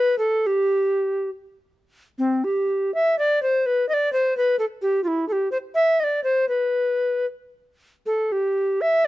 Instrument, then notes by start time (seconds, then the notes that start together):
recorder
Already playing: B4
0.19 A4
0.47 G4
2.19 C4
2.44 G4
2.94 E5
3.19 D5
3.43 C5
3.66 B4
3.89 D#5
3.94 D5
4.13 C5
4.37 B4
4.59 A4
4.82 G4
5.04 E4 F4
5.29 G4 A4
5.51 C5
5.75 E5
6.00 D5 D#5
6.24 C5
6.49 B4
8.06 A4
8.32 G4
8.81 E5